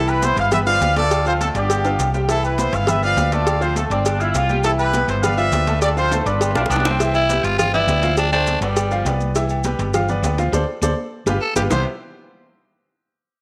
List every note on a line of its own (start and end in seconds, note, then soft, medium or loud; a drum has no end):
0.00 0.31 C2 loud
0.00 0.17 E3 medium
0.00 0.17 E4 medium
0.00 0.48 E4 medium
0.00 0.18 E5 medium
0.08 0.23 B4 medium
0.08 high conga soft
0.08 low agogo loud
0.08 maracas soft
0.22 0.46 B3 medium
0.22 0.47 B4 medium
0.22 0.37 C5 loud
0.22 0.47 B5 medium
0.22 cowbell medium
0.22 high conga loud
0.22 low timbale medium
0.22 maracas medium
0.36 0.78 G1 loud
0.36 0.51 F5 loud
0.36 cowbell medium
0.36 low agogo medium
0.36 maracas soft
0.51 0.64 B3 medium
0.51 0.65 B4 medium
0.51 0.64 B4 medium
0.51 0.58 E5 loud
0.51 0.64 B5 medium
0.51 cowbell loud
0.51 high conga soft
0.51 low conga medium
0.51 low agogo loud
0.51 maracas medium
0.66 0.91 F3 medium
0.66 0.91 F4 loud
0.66 1.07 B4 medium
0.66 0.95 D5 medium
0.66 0.94 F5 loud
0.66 0.91 F5 loud
0.66 maracas soft
0.81 1.49 D2 medium
0.81 cowbell medium
0.81 high conga medium
0.81 low timbale medium
0.81 low agogo medium
0.81 maracas medium
0.96 1.20 A3 medium
0.96 1.51 F4 medium
0.96 1.20 A4 medium
0.96 1.40 A4 medium
0.96 1.24 D5 loud
0.96 1.20 A5 medium
0.96 cowbell medium
0.96 high conga medium
0.96 maracas soft
1.11 cowbell loud
1.11 high conga soft
1.11 low agogo loud
1.11 maracas medium
1.26 1.38 F3 loud
1.26 1.38 F4 loud
1.26 1.33 C5 medium
1.26 1.38 F5 loud
1.26 high conga soft
1.26 low agogo medium
1.26 maracas soft
1.40 1.53 A3 medium
1.40 1.47 A4 medium
1.40 1.53 A4 medium
1.40 1.53 A5 medium
1.40 cowbell medium
1.40 high conga medium
1.40 low timbale medium
1.40 maracas medium
1.54 1.96 G1 medium
1.54 2.10 B3 medium
1.54 1.79 D4 medium
1.54 2.10 D4 medium
1.54 2.10 G4 medium
1.54 1.80 D5 medium
1.54 1.80 D6 medium
1.54 cowbell medium
1.54 maracas soft
1.70 cowbell loud
1.70 high conga soft
1.70 low agogo loud
1.70 maracas medium
1.85 2.09 F4 medium
1.85 2.09 F5 medium
1.85 2.09 F6 medium
1.85 high conga soft
1.85 high timbale loud
1.85 low agogo medium
1.85 maracas soft
1.99 2.67 C2 medium
1.99 cowbell medium
1.99 high conga soft
1.99 low timbale medium
1.99 low agogo loud
1.99 maracas medium
2.14 2.26 G3 medium
2.14 2.26 G4 medium
2.14 2.26 G5 medium
2.14 low timbale medium
2.14 maracas soft
2.29 2.53 E3 medium
2.29 2.53 E4 medium
2.29 2.84 E4 medium
2.29 2.42 A4 loud
2.29 2.53 E5 medium
2.29 cowbell loud
2.29 high conga soft
2.29 low agogo medium
2.29 maracas medium
2.43 2.57 B4 medium
2.43 high conga soft
2.43 low agogo loud
2.43 maracas soft
2.58 2.82 B3 medium
2.58 2.83 B4 medium
2.58 2.73 C5 medium
2.58 2.83 B5 medium
2.58 cowbell medium
2.58 high conga loud
2.58 low timbale medium
2.58 maracas medium
2.73 3.14 G1 loud
2.73 2.88 F5 medium
2.73 cowbell medium
2.73 low agogo medium
2.73 maracas soft
2.87 3.00 B3 medium
2.87 3.00 B4 medium
2.87 3.01 B4 medium
2.87 3.03 E5 loud
2.87 3.00 B5 medium
2.87 cowbell loud
2.87 high conga soft
2.87 low conga medium
2.87 low agogo loud
2.87 maracas medium
3.02 3.26 F3 loud
3.02 3.26 F4 medium
3.02 3.43 B4 medium
3.02 3.31 D5 medium
3.02 3.30 F5 loud
3.02 3.27 F5 medium
3.02 high conga soft
3.02 maracas soft
3.17 3.85 D2 medium
3.17 cowbell medium
3.17 high conga medium
3.17 low timbale medium
3.17 low agogo medium
3.17 maracas medium
3.32 3.56 A3 medium
3.32 3.87 F4 medium
3.32 3.56 A4 medium
3.32 3.75 A4 medium
3.32 3.61 D5 loud
3.32 3.56 A5 medium
3.32 cowbell medium
3.32 high conga medium
3.32 maracas soft
3.47 cowbell loud
3.47 low agogo loud
3.47 maracas medium
3.61 3.73 F3 loud
3.61 3.73 F4 loud
3.61 3.76 C5 loud
3.61 3.74 F5 loud
3.61 high conga soft
3.61 low agogo medium
3.61 maracas soft
3.76 3.88 A3 medium
3.76 3.88 A4 medium
3.76 3.83 A4 medium
3.76 3.88 A5 medium
3.76 cowbell medium
3.76 high conga medium
3.76 low timbale medium
3.76 maracas medium
3.90 4.31 G1 loud
3.90 4.04 C4 medium
3.90 4.15 D4 medium
3.90 4.15 D5 medium
3.90 4.15 D6 medium
3.90 cowbell medium
3.90 high conga soft
3.90 maracas soft
4.05 4.20 D4 loud
4.05 cowbell loud
4.05 high conga soft
4.05 low agogo loud
4.05 maracas medium
4.20 4.35 E4 loud
4.20 4.44 F4 medium
4.20 4.44 F5 medium
4.20 4.44 F6 medium
4.20 high conga soft
4.20 low agogo medium
4.20 maracas soft
4.34 5.03 C2 loud
4.34 4.57 F4 loud
4.34 cowbell medium
4.34 high conga soft
4.34 low timbale medium
4.34 low agogo loud
4.34 maracas medium
4.49 4.61 G3 medium
4.49 4.62 G4 medium
4.49 4.62 G5 medium
4.49 high conga medium
4.49 maracas soft
4.64 4.88 E3 medium
4.64 4.78 E4 medium
4.64 4.89 E4 medium
4.64 4.71 A4 loud
4.64 4.89 E5 medium
4.64 cowbell loud
4.64 high conga soft
4.64 low agogo medium
4.64 maracas medium
4.78 5.20 E4 medium
4.78 5.20 G4 medium
4.78 5.06 B4 loud
4.78 high conga soft
4.78 low agogo loud
4.78 maracas soft
4.94 5.18 B3 medium
4.94 5.18 B4 medium
4.94 5.18 B5 medium
4.94 cowbell medium
4.94 high conga loud
4.94 low timbale medium
4.94 maracas medium
5.07 5.49 G1 loud
5.07 5.21 C5 medium
5.07 cowbell medium
5.07 high conga soft
5.07 low agogo medium
5.07 maracas soft
5.21 5.35 B3 medium
5.21 5.35 B4 medium
5.21 5.37 B4 medium
5.21 5.78 D5 medium
5.21 5.37 F5 loud
5.21 5.35 B5 medium
5.21 cowbell loud
5.21 high conga soft
5.21 low conga medium
5.21 low agogo loud
5.21 maracas medium
5.36 5.62 F3 medium
5.36 5.62 F4 medium
5.36 5.79 B4 medium
5.36 5.78 E5 loud
5.36 5.62 F5 loud
5.36 high conga soft
5.36 maracas soft
5.52 6.20 D2 loud
5.52 cowbell medium
5.52 high conga medium
5.52 low timbale medium
5.52 low agogo medium
5.52 maracas medium
5.67 5.91 A3 medium
5.67 5.92 A4 medium
5.67 5.92 A5 medium
5.67 cowbell medium
5.67 high conga medium
5.67 maracas soft
5.81 5.97 F4 medium
5.81 5.97 A4 medium
5.81 5.88 D5 loud
5.81 cowbell loud
5.81 high conga soft
5.81 low agogo loud
5.81 maracas medium
5.96 6.09 F3 loud
5.96 6.09 F4 loud
5.96 6.26 F4 medium
5.96 6.38 A4 medium
5.96 6.17 C5 loud
5.96 6.09 F5 loud
5.96 high conga soft
5.96 low agogo medium
5.96 maracas soft
6.11 6.23 A3 medium
6.11 6.23 A4 medium
6.11 6.24 A5 medium
6.11 cowbell medium
6.11 high conga medium
6.11 high timbale medium
6.11 maracas medium
6.19 6.26 C5 medium
6.19 high timbale medium
6.26 6.53 G1 loud
6.26 6.50 D4 medium
6.26 6.81 D4 medium
6.26 6.81 F4 medium
6.26 6.85 B4 medium
6.26 6.50 D5 medium
6.26 6.50 D6 medium
6.26 cowbell medium
6.26 maracas soft
6.41 cowbell loud
6.41 high conga soft
6.41 low agogo loud
6.41 maracas medium
6.51 low timbale medium
6.55 6.69 B1 medium
6.55 6.62 D4 loud
6.55 6.79 F4 medium
6.55 6.80 F5 medium
6.55 6.80 F6 medium
6.55 high bongo medium
6.55 high conga soft
6.55 low agogo medium
6.55 maracas soft
6.60 low timbale medium
6.66 7.38 C2 loud
6.66 high bongo medium
6.70 6.84 B3 medium
6.70 6.98 D4 loud
6.70 cowbell medium
6.70 high conga soft
6.70 low agogo loud
6.70 maracas medium
6.76 low bongo medium
6.80 low timbale medium
6.85 6.97 G3 medium
6.85 7.12 C4 loud
6.85 6.97 G4 medium
6.85 6.97 G5 medium
6.85 low bongo medium
6.85 high conga medium
6.85 maracas soft
6.89 low timbale loud
6.99 7.24 E3 medium
6.99 7.24 E4 medium
6.99 7.24 E5 medium
6.99 cowbell loud
6.99 high conga soft
6.99 low agogo medium
6.99 maracas medium
7.14 7.45 E4 loud
7.14 high conga soft
7.14 low agogo loud
7.14 maracas soft
7.29 7.53 G3 medium
7.29 7.54 G4 medium
7.29 7.54 B4 medium
7.29 cowbell medium
7.29 high conga loud
7.29 low timbale medium
7.29 maracas medium
7.43 7.85 G1 medium
7.43 7.58 F4 loud
7.43 cowbell medium
7.43 low agogo medium
7.43 maracas soft
7.58 7.71 F3 medium
7.58 7.72 F4 loud
7.58 7.71 F4 medium
7.58 7.71 F5 medium
7.58 cowbell loud
7.58 high conga soft
7.58 low conga medium
7.58 low agogo loud
7.58 maracas medium
7.73 7.85 B3 medium
7.73 8.15 E4 loud
7.73 7.85 B4 medium
7.73 7.86 D5 medium
7.73 high conga soft
7.73 low conga medium
7.73 maracas soft
7.87 8.56 D2 loud
7.87 8.00 B3 medium
7.87 8.01 B4 medium
7.87 8.01 D5 medium
7.87 cowbell medium
7.87 high conga medium
7.87 low timbale medium
7.87 low agogo medium
7.87 maracas medium
8.03 8.27 F3 medium
8.03 8.27 F4 medium
8.03 8.27 F5 medium
8.03 cowbell medium
8.03 high conga medium
8.03 maracas soft
8.17 8.32 D4 loud
8.17 cowbell loud
8.17 high conga soft
8.17 low agogo loud
8.17 maracas medium
8.32 8.56 A3 medium
8.32 8.60 D4 loud
8.32 8.57 A4 medium
8.32 8.57 C5 medium
8.32 high conga soft
8.32 low agogo medium
8.32 maracas soft
8.47 cowbell medium
8.47 high conga medium
8.47 low timbale medium
8.47 maracas medium
8.61 9.02 G1 loud
8.61 9.17 G3 medium
8.61 8.86 B3 medium
8.61 8.86 B4 medium
8.61 8.86 D5 medium
8.61 cowbell medium
8.61 maracas soft
8.76 cowbell loud
8.76 high conga soft
8.76 low agogo loud
8.76 maracas medium
8.91 9.03 F3 loud
8.91 9.03 F4 loud
8.91 9.03 F5 medium
8.91 high conga soft
8.91 low agogo medium
8.91 maracas soft
9.05 9.73 C2 loud
9.05 9.30 B3 medium
9.05 9.30 B4 medium
9.05 9.30 D5 medium
9.05 cowbell medium
9.05 high conga soft
9.05 low timbale medium
9.05 low agogo loud
9.05 maracas medium
9.20 high conga medium
9.20 maracas soft
9.35 9.59 E3 medium
9.35 9.60 E4 medium
9.35 9.60 E5 medium
9.35 cowbell loud
9.35 high conga soft
9.35 low agogo medium
9.35 maracas medium
9.49 high conga soft
9.49 low agogo loud
9.49 maracas soft
9.64 9.89 G3 medium
9.64 9.89 G4 medium
9.64 9.89 B4 medium
9.64 cowbell medium
9.64 high conga loud
9.64 low timbale medium
9.64 maracas medium
9.79 10.20 G1 loud
9.79 cowbell medium
9.79 high conga soft
9.79 low agogo medium
9.79 maracas soft
9.94 10.06 F3 medium
9.94 10.06 F4 medium
9.94 10.06 F5 medium
9.94 cowbell loud
9.94 high conga soft
9.94 low conga medium
9.94 low agogo loud
9.94 maracas medium
10.09 10.21 B3 medium
10.09 10.21 B4 medium
10.09 10.21 D5 medium
10.09 high conga soft
10.09 low conga medium
10.09 maracas soft
10.22 10.50 D2 loud
10.22 10.36 B3 medium
10.22 10.36 B4 medium
10.22 10.36 D5 medium
10.22 cowbell medium
10.22 high conga medium
10.22 low timbale medium
10.22 low agogo loud
10.22 maracas medium
10.38 10.50 F3 medium
10.38 10.50 F4 medium
10.38 10.51 F5 medium
10.38 cowbell medium
10.38 high conga medium
10.38 maracas soft
10.52 10.63 D2 loud
10.52 10.62 A4 medium
10.52 10.63 C5 loud
10.52 10.63 D5 loud
10.52 cowbell loud
10.52 high conga loud
10.52 high timbale loud
10.52 maracas loud
10.82 10.93 D2 loud
10.82 10.92 A4 medium
10.82 10.92 C5 medium
10.82 10.92 D5 loud
10.82 cowbell loud
10.82 high conga loud
10.82 high timbale loud
10.82 maracas loud
11.26 11.37 G1 loud
11.26 11.36 F4 loud
11.26 11.36 G4 loud
11.26 11.36 B4 loud
11.26 cowbell loud
11.26 high conga loud
11.26 high timbale loud
11.26 maracas loud
11.41 11.55 A4 loud
11.56 11.67 G1 loud
11.56 11.65 F4 medium
11.56 11.65 G4 medium
11.56 11.63 G4 medium
11.56 11.65 B4 medium
11.56 cowbell loud
11.56 high conga loud
11.56 high timbale loud
11.56 maracas loud
11.70 11.84 C2 loud
11.70 11.84 C3 medium
11.70 11.84 G3 medium
11.70 11.84 B3 medium
11.70 11.84 C4 medium
11.70 11.84 E4 medium
11.70 11.84 G4 loud
11.70 11.84 C5 medium
11.70 low bongo loud
11.70 low conga loud
11.70 low timbale loud
11.70 maracas loud